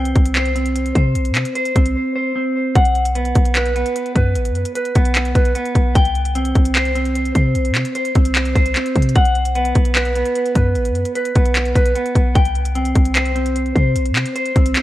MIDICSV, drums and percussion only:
0, 0, Header, 1, 2, 480
1, 0, Start_track
1, 0, Tempo, 400000
1, 1386, Time_signature, 4, 2, 24, 8
1, 17789, End_track
2, 0, Start_track
2, 0, Title_t, "Drums"
2, 63, Note_on_c, 9, 42, 61
2, 183, Note_off_c, 9, 42, 0
2, 186, Note_on_c, 9, 42, 74
2, 187, Note_on_c, 9, 36, 98
2, 306, Note_off_c, 9, 42, 0
2, 307, Note_off_c, 9, 36, 0
2, 307, Note_on_c, 9, 42, 74
2, 423, Note_off_c, 9, 42, 0
2, 423, Note_on_c, 9, 42, 76
2, 427, Note_on_c, 9, 39, 118
2, 543, Note_off_c, 9, 42, 0
2, 547, Note_off_c, 9, 39, 0
2, 547, Note_on_c, 9, 42, 54
2, 667, Note_off_c, 9, 42, 0
2, 668, Note_on_c, 9, 42, 67
2, 787, Note_off_c, 9, 42, 0
2, 787, Note_on_c, 9, 42, 58
2, 907, Note_off_c, 9, 42, 0
2, 907, Note_on_c, 9, 42, 84
2, 1027, Note_off_c, 9, 42, 0
2, 1029, Note_on_c, 9, 42, 46
2, 1145, Note_on_c, 9, 36, 90
2, 1147, Note_off_c, 9, 42, 0
2, 1147, Note_on_c, 9, 42, 72
2, 1265, Note_off_c, 9, 36, 0
2, 1267, Note_off_c, 9, 42, 0
2, 1385, Note_on_c, 9, 42, 82
2, 1503, Note_off_c, 9, 42, 0
2, 1503, Note_on_c, 9, 42, 59
2, 1623, Note_off_c, 9, 42, 0
2, 1623, Note_on_c, 9, 42, 56
2, 1625, Note_on_c, 9, 39, 103
2, 1743, Note_off_c, 9, 42, 0
2, 1743, Note_on_c, 9, 42, 77
2, 1745, Note_off_c, 9, 39, 0
2, 1863, Note_off_c, 9, 42, 0
2, 1865, Note_on_c, 9, 42, 81
2, 1983, Note_off_c, 9, 42, 0
2, 1983, Note_on_c, 9, 42, 61
2, 2103, Note_off_c, 9, 42, 0
2, 2105, Note_on_c, 9, 46, 92
2, 2106, Note_on_c, 9, 36, 94
2, 2106, Note_on_c, 9, 42, 73
2, 2225, Note_off_c, 9, 42, 0
2, 2225, Note_off_c, 9, 46, 0
2, 2225, Note_on_c, 9, 42, 71
2, 2226, Note_off_c, 9, 36, 0
2, 2345, Note_off_c, 9, 42, 0
2, 3305, Note_on_c, 9, 36, 124
2, 3305, Note_on_c, 9, 42, 82
2, 3423, Note_off_c, 9, 42, 0
2, 3423, Note_on_c, 9, 42, 60
2, 3425, Note_off_c, 9, 36, 0
2, 3543, Note_off_c, 9, 42, 0
2, 3543, Note_on_c, 9, 42, 57
2, 3663, Note_off_c, 9, 42, 0
2, 3665, Note_on_c, 9, 42, 80
2, 3785, Note_off_c, 9, 42, 0
2, 3786, Note_on_c, 9, 42, 82
2, 3903, Note_off_c, 9, 42, 0
2, 3903, Note_on_c, 9, 42, 62
2, 4023, Note_off_c, 9, 42, 0
2, 4025, Note_on_c, 9, 42, 71
2, 4026, Note_on_c, 9, 36, 99
2, 4145, Note_off_c, 9, 42, 0
2, 4145, Note_on_c, 9, 42, 75
2, 4146, Note_off_c, 9, 36, 0
2, 4262, Note_off_c, 9, 42, 0
2, 4262, Note_on_c, 9, 42, 78
2, 4266, Note_on_c, 9, 39, 113
2, 4382, Note_off_c, 9, 42, 0
2, 4385, Note_on_c, 9, 42, 52
2, 4386, Note_off_c, 9, 39, 0
2, 4505, Note_off_c, 9, 42, 0
2, 4508, Note_on_c, 9, 42, 68
2, 4626, Note_off_c, 9, 42, 0
2, 4626, Note_on_c, 9, 42, 58
2, 4746, Note_off_c, 9, 42, 0
2, 4746, Note_on_c, 9, 42, 83
2, 4866, Note_off_c, 9, 42, 0
2, 4867, Note_on_c, 9, 42, 48
2, 4984, Note_on_c, 9, 36, 88
2, 4985, Note_off_c, 9, 42, 0
2, 4985, Note_on_c, 9, 42, 75
2, 5104, Note_off_c, 9, 36, 0
2, 5105, Note_off_c, 9, 42, 0
2, 5225, Note_on_c, 9, 42, 84
2, 5343, Note_off_c, 9, 42, 0
2, 5343, Note_on_c, 9, 42, 61
2, 5463, Note_off_c, 9, 42, 0
2, 5463, Note_on_c, 9, 42, 56
2, 5583, Note_off_c, 9, 42, 0
2, 5583, Note_on_c, 9, 42, 76
2, 5703, Note_off_c, 9, 42, 0
2, 5705, Note_on_c, 9, 42, 80
2, 5822, Note_off_c, 9, 42, 0
2, 5822, Note_on_c, 9, 42, 63
2, 5942, Note_off_c, 9, 42, 0
2, 5943, Note_on_c, 9, 42, 73
2, 5946, Note_on_c, 9, 36, 94
2, 6063, Note_off_c, 9, 42, 0
2, 6064, Note_on_c, 9, 42, 73
2, 6066, Note_off_c, 9, 36, 0
2, 6182, Note_off_c, 9, 42, 0
2, 6182, Note_on_c, 9, 42, 78
2, 6185, Note_on_c, 9, 39, 115
2, 6302, Note_off_c, 9, 42, 0
2, 6305, Note_off_c, 9, 39, 0
2, 6305, Note_on_c, 9, 42, 51
2, 6425, Note_off_c, 9, 42, 0
2, 6425, Note_on_c, 9, 36, 96
2, 6427, Note_on_c, 9, 42, 66
2, 6545, Note_off_c, 9, 36, 0
2, 6546, Note_off_c, 9, 42, 0
2, 6546, Note_on_c, 9, 42, 59
2, 6666, Note_off_c, 9, 42, 0
2, 6666, Note_on_c, 9, 42, 81
2, 6786, Note_off_c, 9, 42, 0
2, 6788, Note_on_c, 9, 42, 47
2, 6905, Note_on_c, 9, 36, 87
2, 6907, Note_off_c, 9, 42, 0
2, 6907, Note_on_c, 9, 42, 74
2, 7025, Note_off_c, 9, 36, 0
2, 7027, Note_off_c, 9, 42, 0
2, 7145, Note_on_c, 9, 42, 79
2, 7146, Note_on_c, 9, 36, 124
2, 7264, Note_off_c, 9, 42, 0
2, 7264, Note_on_c, 9, 42, 58
2, 7266, Note_off_c, 9, 36, 0
2, 7384, Note_off_c, 9, 42, 0
2, 7384, Note_on_c, 9, 42, 55
2, 7504, Note_off_c, 9, 42, 0
2, 7505, Note_on_c, 9, 42, 78
2, 7625, Note_off_c, 9, 42, 0
2, 7625, Note_on_c, 9, 42, 81
2, 7743, Note_off_c, 9, 42, 0
2, 7743, Note_on_c, 9, 42, 63
2, 7863, Note_off_c, 9, 42, 0
2, 7867, Note_on_c, 9, 36, 96
2, 7867, Note_on_c, 9, 42, 74
2, 7986, Note_off_c, 9, 42, 0
2, 7986, Note_on_c, 9, 42, 73
2, 7987, Note_off_c, 9, 36, 0
2, 8103, Note_off_c, 9, 42, 0
2, 8103, Note_on_c, 9, 42, 77
2, 8107, Note_on_c, 9, 39, 115
2, 8223, Note_off_c, 9, 42, 0
2, 8226, Note_on_c, 9, 42, 52
2, 8227, Note_off_c, 9, 39, 0
2, 8346, Note_off_c, 9, 42, 0
2, 8348, Note_on_c, 9, 42, 69
2, 8467, Note_off_c, 9, 42, 0
2, 8467, Note_on_c, 9, 42, 58
2, 8587, Note_off_c, 9, 42, 0
2, 8588, Note_on_c, 9, 42, 83
2, 8708, Note_off_c, 9, 42, 0
2, 8708, Note_on_c, 9, 42, 48
2, 8825, Note_on_c, 9, 36, 90
2, 8827, Note_off_c, 9, 42, 0
2, 8827, Note_on_c, 9, 42, 74
2, 8945, Note_off_c, 9, 36, 0
2, 8947, Note_off_c, 9, 42, 0
2, 9065, Note_on_c, 9, 42, 82
2, 9183, Note_off_c, 9, 42, 0
2, 9183, Note_on_c, 9, 42, 60
2, 9303, Note_off_c, 9, 42, 0
2, 9303, Note_on_c, 9, 42, 57
2, 9305, Note_on_c, 9, 39, 102
2, 9423, Note_off_c, 9, 42, 0
2, 9423, Note_on_c, 9, 42, 79
2, 9425, Note_off_c, 9, 39, 0
2, 9543, Note_off_c, 9, 42, 0
2, 9544, Note_on_c, 9, 42, 80
2, 9663, Note_off_c, 9, 42, 0
2, 9663, Note_on_c, 9, 42, 62
2, 9783, Note_off_c, 9, 42, 0
2, 9784, Note_on_c, 9, 42, 73
2, 9784, Note_on_c, 9, 46, 95
2, 9786, Note_on_c, 9, 36, 99
2, 9904, Note_off_c, 9, 42, 0
2, 9904, Note_off_c, 9, 46, 0
2, 9904, Note_on_c, 9, 42, 74
2, 9906, Note_off_c, 9, 36, 0
2, 10021, Note_off_c, 9, 42, 0
2, 10021, Note_on_c, 9, 42, 76
2, 10025, Note_on_c, 9, 39, 118
2, 10141, Note_off_c, 9, 42, 0
2, 10145, Note_off_c, 9, 39, 0
2, 10145, Note_on_c, 9, 42, 52
2, 10265, Note_off_c, 9, 42, 0
2, 10265, Note_on_c, 9, 36, 93
2, 10267, Note_on_c, 9, 42, 71
2, 10385, Note_off_c, 9, 36, 0
2, 10387, Note_off_c, 9, 42, 0
2, 10387, Note_on_c, 9, 42, 58
2, 10506, Note_on_c, 9, 39, 97
2, 10507, Note_off_c, 9, 42, 0
2, 10507, Note_on_c, 9, 42, 83
2, 10626, Note_off_c, 9, 39, 0
2, 10627, Note_off_c, 9, 42, 0
2, 10628, Note_on_c, 9, 42, 47
2, 10744, Note_off_c, 9, 42, 0
2, 10744, Note_on_c, 9, 42, 62
2, 10745, Note_on_c, 9, 36, 86
2, 10824, Note_off_c, 9, 42, 0
2, 10824, Note_on_c, 9, 42, 64
2, 10865, Note_off_c, 9, 36, 0
2, 10904, Note_off_c, 9, 42, 0
2, 10904, Note_on_c, 9, 42, 61
2, 10983, Note_off_c, 9, 42, 0
2, 10983, Note_on_c, 9, 42, 79
2, 10985, Note_on_c, 9, 36, 124
2, 11103, Note_off_c, 9, 42, 0
2, 11103, Note_on_c, 9, 42, 61
2, 11105, Note_off_c, 9, 36, 0
2, 11222, Note_off_c, 9, 42, 0
2, 11222, Note_on_c, 9, 42, 57
2, 11342, Note_off_c, 9, 42, 0
2, 11343, Note_on_c, 9, 42, 79
2, 11463, Note_off_c, 9, 42, 0
2, 11465, Note_on_c, 9, 42, 79
2, 11583, Note_off_c, 9, 42, 0
2, 11583, Note_on_c, 9, 42, 64
2, 11703, Note_off_c, 9, 42, 0
2, 11705, Note_on_c, 9, 42, 72
2, 11706, Note_on_c, 9, 36, 98
2, 11824, Note_off_c, 9, 42, 0
2, 11824, Note_on_c, 9, 42, 74
2, 11826, Note_off_c, 9, 36, 0
2, 11942, Note_off_c, 9, 42, 0
2, 11942, Note_on_c, 9, 42, 76
2, 11946, Note_on_c, 9, 39, 116
2, 12062, Note_off_c, 9, 42, 0
2, 12064, Note_on_c, 9, 42, 50
2, 12066, Note_off_c, 9, 39, 0
2, 12184, Note_off_c, 9, 42, 0
2, 12186, Note_on_c, 9, 42, 69
2, 12306, Note_off_c, 9, 42, 0
2, 12306, Note_on_c, 9, 42, 58
2, 12426, Note_off_c, 9, 42, 0
2, 12426, Note_on_c, 9, 42, 83
2, 12546, Note_off_c, 9, 42, 0
2, 12547, Note_on_c, 9, 42, 48
2, 12664, Note_on_c, 9, 36, 90
2, 12665, Note_off_c, 9, 42, 0
2, 12665, Note_on_c, 9, 42, 74
2, 12784, Note_off_c, 9, 36, 0
2, 12785, Note_off_c, 9, 42, 0
2, 12904, Note_on_c, 9, 42, 80
2, 13022, Note_off_c, 9, 42, 0
2, 13022, Note_on_c, 9, 42, 59
2, 13142, Note_off_c, 9, 42, 0
2, 13142, Note_on_c, 9, 42, 58
2, 13262, Note_off_c, 9, 42, 0
2, 13263, Note_on_c, 9, 42, 78
2, 13383, Note_off_c, 9, 42, 0
2, 13385, Note_on_c, 9, 42, 80
2, 13503, Note_off_c, 9, 42, 0
2, 13503, Note_on_c, 9, 42, 63
2, 13623, Note_off_c, 9, 42, 0
2, 13625, Note_on_c, 9, 42, 70
2, 13626, Note_on_c, 9, 36, 99
2, 13745, Note_off_c, 9, 42, 0
2, 13746, Note_off_c, 9, 36, 0
2, 13746, Note_on_c, 9, 42, 72
2, 13863, Note_off_c, 9, 42, 0
2, 13863, Note_on_c, 9, 42, 77
2, 13867, Note_on_c, 9, 39, 117
2, 13983, Note_off_c, 9, 42, 0
2, 13986, Note_on_c, 9, 42, 54
2, 13987, Note_off_c, 9, 39, 0
2, 14105, Note_on_c, 9, 36, 93
2, 14106, Note_off_c, 9, 42, 0
2, 14108, Note_on_c, 9, 42, 68
2, 14225, Note_off_c, 9, 36, 0
2, 14227, Note_off_c, 9, 42, 0
2, 14227, Note_on_c, 9, 42, 58
2, 14347, Note_off_c, 9, 42, 0
2, 14347, Note_on_c, 9, 42, 84
2, 14467, Note_off_c, 9, 42, 0
2, 14469, Note_on_c, 9, 42, 48
2, 14585, Note_on_c, 9, 36, 92
2, 14588, Note_off_c, 9, 42, 0
2, 14588, Note_on_c, 9, 42, 73
2, 14705, Note_off_c, 9, 36, 0
2, 14708, Note_off_c, 9, 42, 0
2, 14826, Note_on_c, 9, 36, 120
2, 14826, Note_on_c, 9, 42, 78
2, 14945, Note_off_c, 9, 42, 0
2, 14945, Note_on_c, 9, 42, 58
2, 14946, Note_off_c, 9, 36, 0
2, 15065, Note_off_c, 9, 42, 0
2, 15065, Note_on_c, 9, 42, 57
2, 15185, Note_off_c, 9, 42, 0
2, 15185, Note_on_c, 9, 42, 78
2, 15305, Note_off_c, 9, 42, 0
2, 15306, Note_on_c, 9, 42, 81
2, 15424, Note_off_c, 9, 42, 0
2, 15424, Note_on_c, 9, 42, 62
2, 15544, Note_off_c, 9, 42, 0
2, 15546, Note_on_c, 9, 42, 74
2, 15547, Note_on_c, 9, 36, 96
2, 15665, Note_off_c, 9, 42, 0
2, 15665, Note_on_c, 9, 42, 76
2, 15667, Note_off_c, 9, 36, 0
2, 15783, Note_off_c, 9, 42, 0
2, 15783, Note_on_c, 9, 42, 80
2, 15787, Note_on_c, 9, 39, 118
2, 15903, Note_off_c, 9, 42, 0
2, 15906, Note_on_c, 9, 42, 54
2, 15907, Note_off_c, 9, 39, 0
2, 16026, Note_off_c, 9, 42, 0
2, 16029, Note_on_c, 9, 42, 69
2, 16149, Note_off_c, 9, 42, 0
2, 16149, Note_on_c, 9, 42, 58
2, 16269, Note_off_c, 9, 42, 0
2, 16269, Note_on_c, 9, 42, 81
2, 16389, Note_off_c, 9, 42, 0
2, 16389, Note_on_c, 9, 42, 47
2, 16505, Note_on_c, 9, 36, 86
2, 16509, Note_off_c, 9, 42, 0
2, 16509, Note_on_c, 9, 42, 73
2, 16625, Note_off_c, 9, 36, 0
2, 16629, Note_off_c, 9, 42, 0
2, 16746, Note_on_c, 9, 42, 81
2, 16865, Note_off_c, 9, 42, 0
2, 16865, Note_on_c, 9, 42, 59
2, 16985, Note_off_c, 9, 42, 0
2, 16985, Note_on_c, 9, 42, 55
2, 16986, Note_on_c, 9, 39, 100
2, 17105, Note_off_c, 9, 42, 0
2, 17105, Note_on_c, 9, 42, 76
2, 17106, Note_off_c, 9, 39, 0
2, 17225, Note_off_c, 9, 42, 0
2, 17226, Note_on_c, 9, 42, 78
2, 17345, Note_off_c, 9, 42, 0
2, 17345, Note_on_c, 9, 42, 63
2, 17465, Note_off_c, 9, 42, 0
2, 17467, Note_on_c, 9, 36, 94
2, 17467, Note_on_c, 9, 42, 72
2, 17467, Note_on_c, 9, 46, 97
2, 17587, Note_off_c, 9, 36, 0
2, 17587, Note_off_c, 9, 42, 0
2, 17587, Note_off_c, 9, 46, 0
2, 17587, Note_on_c, 9, 42, 73
2, 17703, Note_off_c, 9, 42, 0
2, 17703, Note_on_c, 9, 42, 79
2, 17707, Note_on_c, 9, 39, 116
2, 17789, Note_off_c, 9, 39, 0
2, 17789, Note_off_c, 9, 42, 0
2, 17789, End_track
0, 0, End_of_file